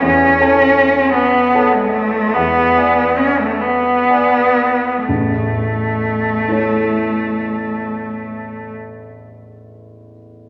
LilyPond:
<<
  \new Staff \with { instrumentName = "Grand piano" } { \time 12/8 \key a \major \tempo 4. = 44 << { e,8 <a' cis'' a''>4. <a' cis'' a''>4 e,8 <b' d'' gis''>4. <b' d'' gis''>4 | <a,, e,>1. | } \\ { r1. | r4. <e' a' cis''>1~ <e' a' cis''>8 | } >> }
  \new Staff \with { instrumentName = "Cello" } { \time 12/8 \key a \major cis'4. b8. gis16 a8 b4 cis'16 a16 b4. | a1. | }
>>